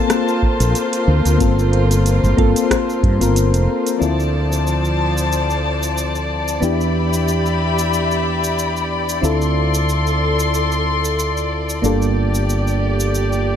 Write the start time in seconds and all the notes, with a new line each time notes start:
Already playing: A#3 C4 F4 A4 C5 A5
0.08 A#3 C4 F4 C5, cross-stick, closed hi-hat, shaker
0.28 shaker
0.42 kick
0.60 A#1, closed hi-hat, shaker
0.75 closed hi-hat, shaker
0.93 closed hi-hat, shaker
1.08 D2
1.25 D2, closed hi-hat, shaker
1.38 G1 A#3 C4 F4 A4, kick, closed hi-hat, shaker
1.59 shaker
1.73 closed hi-hat
1.91 closed hi-hat, shaker
2.06 closed hi-hat, shaker
2.23 G1, shaker
2.37 G1 A#3 C4 F4 A4, kick, closed hi-hat
2.56 closed hi-hat, shaker
2.70 A#3 C4 F4 C5, kick, cross-stick, closed hi-hat, shaker
2.90 shaker
3.03 G2, kick, closed hi-hat
3.19 G1 A#3 C4 F4 A#4, closed hi-hat, shaker
3.36 closed hi-hat, shaker
3.54 F1, closed hi-hat, shaker
3.87 closed hi-hat, shaker
3.99 D2 F3 C4 E4 F4 A4 C5 D5 A5, shaker
4.20 shaker
4.52 shaker
4.67 shaker
4.85 shaker
5.18 shaker
5.32 shaker
5.50 shaker
5.83 shaker
5.98 shaker
6.15 shaker
6.48 shaker
6.60 E2 B3 D4 E4 G4 E5 B5, shaker
6.81 shaker
7.13 shaker
7.28 shaker
7.46 shaker
7.79 shaker
7.93 shaker
8.11 shaker
8.44 shaker
8.59 shaker
8.77 shaker
9.09 shaker
9.21 D2 C4 E4 F4 A4 C6, shaker
9.42 shaker
9.74 shaker
9.89 shaker
10.07 shaker
10.39 shaker
10.54 shaker
10.72 shaker
11.05 shaker
11.19 shaker
11.37 shaker
11.69 shaker
11.82 G1 A#3 D4 F4 G4 A4 D5, shaker
12.02 shaker
12.35 shaker
12.50 shaker
12.67 shaker
13.00 shaker
13.15 shaker
13.33 shaker